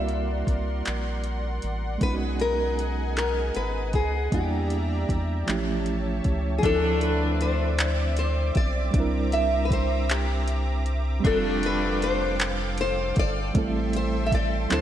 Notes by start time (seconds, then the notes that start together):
Already playing: C2 G3 A#3 C4 E4 F#4 A#4 D5 E5 F#5 C6
0.08 closed hi-hat
0.47 C2, kick, closed hi-hat
0.85 A#1, clap, closed hi-hat
1.24 closed hi-hat
1.62 A1, closed hi-hat
1.98 B1 G#3 B3 G#4 D#5 G#5, kick, closed hi-hat
2.03 C#4 D#4 B4
2.08 F4
2.14 F#4
2.40 A#4, closed hi-hat
2.79 closed hi-hat
3.17 A#4, clap, closed hi-hat
3.55 G#1 B4, closed hi-hat
3.93 C#2 G#4, kick, closed hi-hat
4.31 E2 G3 A#3 D4 E4 G4 D5 E5 A#5, kick, closed hi-hat
4.36 G4
4.70 closed hi-hat
5.09 E2, kick, closed hi-hat
5.46 A1 F3 A3 C#4 E4 C#5 E5 A5, clap, closed hi-hat
5.51 G4
5.86 closed hi-hat
6.24 C#2, kick, closed hi-hat
6.58 F3 C4 G#4
6.63 D2 D3 F3 A3 C4 D4 E4 A4 D5 E5 D6, kick, closed hi-hat
6.69 A4
7.01 B4, closed hi-hat
7.41 C5, closed hi-hat
7.78 clap, closed hi-hat
8.17 C5, closed hi-hat
8.55 B1 D5, kick, closed hi-hat
8.91 C2 G3 C4 E5 A#5, kick, closed hi-hat
8.95 D4 E4
9.00 A#4
9.32 E5, closed hi-hat
9.65 B4
9.71 C5, kick, closed hi-hat
10.09 G4, clap, closed hi-hat
10.48 closed hi-hat
10.86 closed hi-hat
11.20 G3 C4
11.24 F1 D3 G3 A3 D4 F4 A4 F5 G5 D6, kick, closed hi-hat
11.30 A4
11.63 B4, closed hi-hat
12.02 C5, closed hi-hat
12.40 clap, closed hi-hat
12.78 C5, closed hi-hat
13.16 G1 D5, kick, closed hi-hat
13.54 A1 G3 A3 C4 E4 E5 G5 C6, kick, closed hi-hat
13.58 A4
13.93 C5, closed hi-hat
14.26 E5
14.32 D5, kick, closed hi-hat
14.69 D2 F#3 C4 D4 E4 C5 F#5 D6, clap, closed hi-hat
14.74 A4